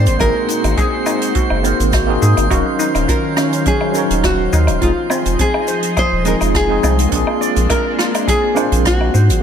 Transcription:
Already playing: G#3 C4 F#4 C5 C6
0.06 G#1, closed hi-hat, shaker
0.18 G#1 A#3 C4 D#4 F#4 G#4 A#4, kick, closed hi-hat, low woodblock, shaker
0.48 D#4, closed hi-hat, shaker
0.64 G#1, closed hi-hat, low woodblock, shaker
0.77 G#4, kick, closed hi-hat, shaker
1.06 D#4, closed hi-hat, low woodblock, shaker
1.21 closed hi-hat, shaker
1.35 F#4, kick, closed hi-hat, shaker
1.50 F#1, low woodblock
1.62 A#3 C4 D#4 F#4 A#4, closed hi-hat, shaker
1.80 G#1, closed hi-hat, shaker
1.93 F#4, kick, cross-stick, closed hi-hat, low woodblock, shaker
2.06 A#3 C4 D#4 F#4 G#4
2.22 G#2 G#4, shaker
2.37 G#1, closed hi-hat, low woodblock, shaker
2.47 D#1 D#3 F#3 C#4 D#4 F#4 F5, kick, closed hi-hat, low woodblock
2.51 A#4 F5, shaker
2.79 D#4, shaker
2.95 D#1, closed hi-hat, low woodblock, shaker
3.08 F4 A#4, kick, closed hi-hat, shaker
3.37 C#4, cross-stick, closed hi-hat, low woodblock, shaker
3.53 closed hi-hat, shaker
3.65 C#4 G#4, kick, closed hi-hat, shaker
3.81 low woodblock
3.92 F#3 C#4 D#4 A#4, closed hi-hat, shaker
3.97 C#5 F5
4.10 D#1, closed hi-hat, shaker
4.24 F#4, kick, cross-stick, closed hi-hat, low woodblock, shaker
4.53 D#2 D#4, shaker
4.67 D#1, closed hi-hat, low woodblock, shaker
4.80 F1 F3 G#3 C4 D#4 F4 G#4, kick, closed hi-hat, shaker
5.10 C4, low woodblock, shaker
5.25 F1, closed hi-hat, shaker
5.39 C4 G#4, kick, closed hi-hat, shaker
5.54 low woodblock
5.68 C5, closed hi-hat, shaker
5.83 closed hi-hat, shaker
5.97 G#4 C5, kick, closed hi-hat, low woodblock, shaker
6.12 D#1
6.24 G#3 C4 D#4 F4 G#4 A#4, closed hi-hat, shaker
6.41 F1, closed hi-hat, low woodblock, shaker
6.54 F4 G#4, kick, cross-stick, closed hi-hat, shaker
6.68 G#3 C4 D#4 F4 G#4
6.83 C2 C4, low woodblock, shaker
6.99 closed hi-hat, shaker
7.09 A#1 G#3 A#3 C4 D4, kick, closed hi-hat
7.13 F4 G#4, shaker
7.27 low woodblock
7.41 D5, shaker
7.56 A#1, closed hi-hat, shaker
7.70 A#4, kick, closed hi-hat, low woodblock, shaker
7.99 F4, cross-stick, closed hi-hat, shaker
8.14 closed hi-hat, low woodblock, shaker
8.27 G#4, kick, closed hi-hat, shaker
8.54 A#3 C4 D4 F4 C5, closed hi-hat, low woodblock, shaker
8.72 A#1, closed hi-hat, shaker
8.85 D4 F#4, kick, cross-stick, closed hi-hat, shaker
9.01 low woodblock
9.14 G#2 F#3 G#3 C4 C5, shaker
9.29 G#1, closed hi-hat, shaker

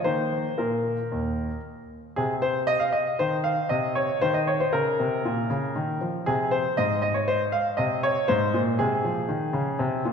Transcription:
0.04 D#3 A#3 D#4 C5
0.58 A#2 A#4
1.12 D#2
2.16 C3 G#4
2.42 C5
2.67 D#5
2.80 F5
2.93 D#5
3.19 D#3 C5
3.44 F5
3.69 C3 D#5
3.95 C#5
4.21 D#3 C5
4.34 D#5
4.47 C#5
4.60 C5
4.73 C#3 A#4
5.00 C3
5.25 A#2
5.50 C#3
5.75 D#3
6.01 F3
6.26 C3 G#4
6.51 C5
6.77 G#2 D#5
7.02 D#5
7.14 C#5
7.28 C5
7.52 F5
7.77 C3 D#5
8.03 C#5
8.28 G#2 C5
8.54 A#2
8.79 C3 G#4
9.04 F3
9.28 D#3
9.53 C#3
9.79 C3
10.05 A#2

